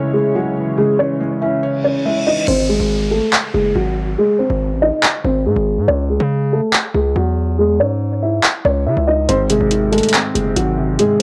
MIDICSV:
0, 0, Header, 1, 8, 480
1, 0, Start_track
1, 0, Key_signature, 4, "minor"
1, 0, Tempo, 425532
1, 875, Time_signature, 4, 2, 24, 8
1, 12656, End_track
2, 0, Start_track
2, 0, Title_t, "Grand piano"
2, 0, Program_c, 0, 0
2, 151, Note_on_c, 0, 68, 85
2, 160, Note_on_c, 0, 56, 64
2, 355, Note_off_c, 0, 68, 0
2, 360, Note_off_c, 0, 56, 0
2, 396, Note_on_c, 0, 66, 78
2, 405, Note_on_c, 0, 54, 62
2, 847, Note_off_c, 0, 66, 0
2, 852, Note_off_c, 0, 54, 0
2, 876, Note_on_c, 0, 68, 87
2, 885, Note_on_c, 0, 56, 75
2, 1078, Note_off_c, 0, 68, 0
2, 1083, Note_off_c, 0, 56, 0
2, 1117, Note_on_c, 0, 73, 78
2, 1127, Note_on_c, 0, 61, 59
2, 1568, Note_off_c, 0, 73, 0
2, 1573, Note_off_c, 0, 61, 0
2, 1598, Note_on_c, 0, 76, 78
2, 1606, Note_on_c, 0, 64, 66
2, 1798, Note_off_c, 0, 76, 0
2, 1803, Note_off_c, 0, 64, 0
2, 2080, Note_on_c, 0, 73, 75
2, 2089, Note_on_c, 0, 61, 57
2, 2280, Note_off_c, 0, 73, 0
2, 2285, Note_off_c, 0, 61, 0
2, 2320, Note_on_c, 0, 76, 77
2, 2329, Note_on_c, 0, 64, 60
2, 2520, Note_off_c, 0, 76, 0
2, 2525, Note_off_c, 0, 64, 0
2, 2559, Note_on_c, 0, 75, 80
2, 2567, Note_on_c, 0, 63, 58
2, 2759, Note_off_c, 0, 75, 0
2, 2764, Note_off_c, 0, 63, 0
2, 2797, Note_on_c, 0, 72, 102
2, 2805, Note_on_c, 0, 60, 73
2, 2998, Note_off_c, 0, 72, 0
2, 3003, Note_off_c, 0, 60, 0
2, 3033, Note_on_c, 0, 68, 89
2, 3041, Note_on_c, 0, 56, 66
2, 3485, Note_off_c, 0, 68, 0
2, 3490, Note_off_c, 0, 56, 0
2, 3509, Note_on_c, 0, 69, 75
2, 3517, Note_on_c, 0, 57, 60
2, 3713, Note_off_c, 0, 69, 0
2, 3718, Note_off_c, 0, 57, 0
2, 3988, Note_on_c, 0, 68, 73
2, 3998, Note_on_c, 0, 56, 60
2, 4193, Note_off_c, 0, 68, 0
2, 4198, Note_off_c, 0, 56, 0
2, 4231, Note_on_c, 0, 66, 82
2, 4240, Note_on_c, 0, 54, 58
2, 4685, Note_off_c, 0, 66, 0
2, 4689, Note_off_c, 0, 54, 0
2, 4717, Note_on_c, 0, 68, 97
2, 4726, Note_on_c, 0, 56, 77
2, 4918, Note_off_c, 0, 68, 0
2, 4923, Note_off_c, 0, 56, 0
2, 4948, Note_on_c, 0, 72, 74
2, 4957, Note_on_c, 0, 60, 61
2, 5403, Note_off_c, 0, 72, 0
2, 5407, Note_off_c, 0, 60, 0
2, 5435, Note_on_c, 0, 75, 91
2, 5444, Note_on_c, 0, 63, 66
2, 5637, Note_off_c, 0, 75, 0
2, 5642, Note_off_c, 0, 63, 0
2, 5919, Note_on_c, 0, 72, 89
2, 5928, Note_on_c, 0, 60, 70
2, 6119, Note_off_c, 0, 72, 0
2, 6125, Note_off_c, 0, 60, 0
2, 6157, Note_on_c, 0, 68, 82
2, 6165, Note_on_c, 0, 56, 62
2, 6607, Note_off_c, 0, 68, 0
2, 6612, Note_off_c, 0, 56, 0
2, 6631, Note_on_c, 0, 73, 99
2, 6641, Note_on_c, 0, 61, 76
2, 6835, Note_off_c, 0, 73, 0
2, 6840, Note_off_c, 0, 61, 0
2, 6875, Note_on_c, 0, 68, 79
2, 6884, Note_on_c, 0, 56, 64
2, 7326, Note_off_c, 0, 68, 0
2, 7331, Note_off_c, 0, 56, 0
2, 7362, Note_on_c, 0, 69, 74
2, 7371, Note_on_c, 0, 57, 62
2, 7561, Note_off_c, 0, 69, 0
2, 7566, Note_off_c, 0, 57, 0
2, 7832, Note_on_c, 0, 68, 87
2, 7842, Note_on_c, 0, 56, 65
2, 8035, Note_off_c, 0, 68, 0
2, 8041, Note_off_c, 0, 56, 0
2, 8077, Note_on_c, 0, 66, 87
2, 8087, Note_on_c, 0, 54, 63
2, 8528, Note_off_c, 0, 66, 0
2, 8533, Note_off_c, 0, 54, 0
2, 8556, Note_on_c, 0, 68, 89
2, 8565, Note_on_c, 0, 56, 77
2, 8757, Note_off_c, 0, 68, 0
2, 8763, Note_off_c, 0, 56, 0
2, 8798, Note_on_c, 0, 73, 78
2, 8806, Note_on_c, 0, 61, 56
2, 9248, Note_off_c, 0, 73, 0
2, 9253, Note_off_c, 0, 61, 0
2, 9277, Note_on_c, 0, 76, 82
2, 9285, Note_on_c, 0, 64, 68
2, 9478, Note_off_c, 0, 76, 0
2, 9483, Note_off_c, 0, 64, 0
2, 9759, Note_on_c, 0, 73, 79
2, 9768, Note_on_c, 0, 61, 60
2, 9959, Note_off_c, 0, 73, 0
2, 9964, Note_off_c, 0, 61, 0
2, 9999, Note_on_c, 0, 76, 76
2, 10008, Note_on_c, 0, 64, 62
2, 10199, Note_off_c, 0, 76, 0
2, 10204, Note_off_c, 0, 64, 0
2, 10235, Note_on_c, 0, 75, 80
2, 10244, Note_on_c, 0, 63, 60
2, 10437, Note_off_c, 0, 75, 0
2, 10442, Note_off_c, 0, 63, 0
2, 10475, Note_on_c, 0, 72, 103
2, 10485, Note_on_c, 0, 60, 74
2, 10677, Note_off_c, 0, 72, 0
2, 10683, Note_off_c, 0, 60, 0
2, 10711, Note_on_c, 0, 68, 89
2, 10720, Note_on_c, 0, 56, 63
2, 11164, Note_off_c, 0, 68, 0
2, 11169, Note_off_c, 0, 56, 0
2, 11188, Note_on_c, 0, 69, 78
2, 11197, Note_on_c, 0, 57, 60
2, 11393, Note_off_c, 0, 69, 0
2, 11398, Note_off_c, 0, 57, 0
2, 11669, Note_on_c, 0, 68, 71
2, 11677, Note_on_c, 0, 56, 59
2, 11873, Note_off_c, 0, 68, 0
2, 11878, Note_off_c, 0, 56, 0
2, 11911, Note_on_c, 0, 66, 82
2, 11921, Note_on_c, 0, 54, 59
2, 12365, Note_off_c, 0, 66, 0
2, 12370, Note_off_c, 0, 54, 0
2, 12397, Note_on_c, 0, 68, 98
2, 12407, Note_on_c, 0, 56, 80
2, 12598, Note_off_c, 0, 68, 0
2, 12604, Note_off_c, 0, 56, 0
2, 12656, End_track
3, 0, Start_track
3, 0, Title_t, "Analog synth pad"
3, 0, Program_c, 1, 89
3, 0, Note_on_c, 1, 49, 83
3, 0, Note_on_c, 1, 56, 75
3, 0, Note_on_c, 1, 64, 75
3, 0, Note_on_c, 1, 73, 89
3, 2758, Note_off_c, 1, 49, 0
3, 2758, Note_off_c, 1, 56, 0
3, 2758, Note_off_c, 1, 64, 0
3, 2758, Note_off_c, 1, 73, 0
3, 12656, End_track
4, 0, Start_track
4, 0, Title_t, "Felt piano"
4, 0, Program_c, 2, 0
4, 0, Control_c, 2, 64, 127
4, 0, Note_on_c, 2, 49, 90
4, 0, Note_on_c, 2, 52, 72
4, 0, Note_on_c, 2, 56, 84
4, 0, Note_on_c, 2, 61, 89
4, 0, Note_on_c, 2, 73, 99
4, 157, Note_off_c, 2, 49, 0
4, 378, Note_off_c, 2, 56, 0
4, 394, Note_on_c, 2, 56, 92
4, 395, Note_off_c, 2, 52, 0
4, 635, Note_on_c, 2, 52, 84
4, 874, Note_on_c, 2, 49, 94
4, 876, Note_off_c, 2, 61, 0
4, 1100, Note_off_c, 2, 52, 0
4, 1114, Note_off_c, 2, 73, 0
4, 1117, Note_on_c, 2, 52, 83
4, 1339, Note_off_c, 2, 56, 0
4, 1356, Note_on_c, 2, 56, 81
4, 1597, Note_on_c, 2, 61, 86
4, 1837, Note_on_c, 2, 73, 94
4, 2075, Note_off_c, 2, 49, 0
4, 2299, Note_off_c, 2, 56, 0
4, 2316, Note_off_c, 2, 52, 0
4, 2316, Note_on_c, 2, 56, 89
4, 2557, Note_on_c, 2, 52, 76
4, 2796, Note_off_c, 2, 52, 0
4, 2796, Note_off_c, 2, 56, 0
4, 2796, Note_off_c, 2, 61, 0
4, 2796, Note_off_c, 2, 73, 0
4, 2811, Control_c, 2, 64, 0
4, 2995, Control_c, 2, 64, 127
4, 6650, Control_c, 2, 64, 0
4, 10476, Note_on_c, 2, 44, 94
4, 10657, Control_c, 2, 64, 127
4, 10715, Note_on_c, 2, 48, 85
4, 10957, Note_on_c, 2, 51, 87
4, 11198, Note_on_c, 2, 56, 92
4, 11435, Note_on_c, 2, 60, 100
4, 11676, Note_off_c, 2, 44, 0
4, 11897, Note_off_c, 2, 51, 0
4, 11914, Note_on_c, 2, 51, 92
4, 11915, Note_off_c, 2, 48, 0
4, 12156, Note_on_c, 2, 48, 78
4, 12397, Note_off_c, 2, 56, 0
4, 12397, Note_on_c, 2, 44, 90
4, 12619, Note_off_c, 2, 48, 0
4, 12635, Note_off_c, 2, 60, 0
4, 12656, Note_off_c, 2, 44, 0
4, 12656, Note_off_c, 2, 51, 0
4, 12656, End_track
5, 0, Start_track
5, 0, Title_t, "808-style bass"
5, 0, Program_c, 3, 38
5, 2795, Note_on_c, 3, 32, 117
5, 3141, Note_off_c, 3, 32, 0
5, 3156, Note_on_c, 3, 32, 102
5, 3616, Note_off_c, 3, 32, 0
5, 3996, Note_on_c, 3, 30, 109
5, 4226, Note_off_c, 3, 30, 0
5, 4236, Note_on_c, 3, 32, 107
5, 4696, Note_off_c, 3, 32, 0
5, 5075, Note_on_c, 3, 32, 110
5, 5315, Note_on_c, 3, 33, 97
5, 5332, Note_off_c, 3, 32, 0
5, 5543, Note_off_c, 3, 33, 0
5, 5915, Note_on_c, 3, 32, 108
5, 6155, Note_on_c, 3, 44, 95
5, 6172, Note_off_c, 3, 32, 0
5, 6269, Note_off_c, 3, 44, 0
5, 6274, Note_on_c, 3, 32, 109
5, 6515, Note_on_c, 3, 44, 93
5, 6532, Note_off_c, 3, 32, 0
5, 6629, Note_off_c, 3, 44, 0
5, 6636, Note_on_c, 3, 37, 112
5, 6981, Note_off_c, 3, 37, 0
5, 6995, Note_on_c, 3, 49, 102
5, 7456, Note_off_c, 3, 49, 0
5, 7834, Note_on_c, 3, 37, 105
5, 8065, Note_off_c, 3, 37, 0
5, 8075, Note_on_c, 3, 40, 108
5, 8795, Note_on_c, 3, 44, 100
5, 8812, Note_off_c, 3, 40, 0
5, 9479, Note_off_c, 3, 44, 0
5, 9756, Note_on_c, 3, 37, 110
5, 9996, Note_on_c, 3, 49, 98
5, 10013, Note_off_c, 3, 37, 0
5, 10110, Note_off_c, 3, 49, 0
5, 10116, Note_on_c, 3, 37, 102
5, 10461, Note_off_c, 3, 37, 0
5, 10476, Note_on_c, 3, 32, 114
5, 10822, Note_off_c, 3, 32, 0
5, 10836, Note_on_c, 3, 32, 101
5, 11297, Note_off_c, 3, 32, 0
5, 11676, Note_on_c, 3, 30, 104
5, 11906, Note_off_c, 3, 30, 0
5, 11915, Note_on_c, 3, 32, 106
5, 12376, Note_off_c, 3, 32, 0
5, 12656, End_track
6, 0, Start_track
6, 0, Title_t, "Downlifter"
6, 0, Program_c, 4, 103
6, 2796, Note_on_c, 4, 60, 83
6, 6636, Note_off_c, 4, 60, 0
6, 12656, End_track
7, 0, Start_track
7, 0, Title_t, "Reverse cymbal"
7, 0, Program_c, 5, 119
7, 1836, Note_on_c, 5, 60, 86
7, 2796, Note_off_c, 5, 60, 0
7, 12656, End_track
8, 0, Start_track
8, 0, Title_t, "Drums"
8, 2796, Note_on_c, 9, 49, 96
8, 2909, Note_off_c, 9, 49, 0
8, 3755, Note_on_c, 9, 39, 125
8, 3868, Note_off_c, 9, 39, 0
8, 5674, Note_on_c, 9, 39, 124
8, 5787, Note_off_c, 9, 39, 0
8, 7594, Note_on_c, 9, 39, 127
8, 7706, Note_off_c, 9, 39, 0
8, 9515, Note_on_c, 9, 39, 127
8, 9627, Note_off_c, 9, 39, 0
8, 10477, Note_on_c, 9, 42, 76
8, 10589, Note_off_c, 9, 42, 0
8, 10712, Note_on_c, 9, 42, 84
8, 10825, Note_off_c, 9, 42, 0
8, 10952, Note_on_c, 9, 42, 73
8, 11065, Note_off_c, 9, 42, 0
8, 11196, Note_on_c, 9, 42, 49
8, 11257, Note_off_c, 9, 42, 0
8, 11257, Note_on_c, 9, 42, 55
8, 11316, Note_off_c, 9, 42, 0
8, 11316, Note_on_c, 9, 42, 65
8, 11377, Note_off_c, 9, 42, 0
8, 11377, Note_on_c, 9, 42, 75
8, 11435, Note_on_c, 9, 39, 125
8, 11438, Note_off_c, 9, 42, 0
8, 11438, Note_on_c, 9, 42, 85
8, 11548, Note_off_c, 9, 39, 0
8, 11551, Note_off_c, 9, 42, 0
8, 11679, Note_on_c, 9, 42, 72
8, 11792, Note_off_c, 9, 42, 0
8, 11917, Note_on_c, 9, 42, 75
8, 12029, Note_off_c, 9, 42, 0
8, 12396, Note_on_c, 9, 42, 76
8, 12509, Note_off_c, 9, 42, 0
8, 12656, End_track
0, 0, End_of_file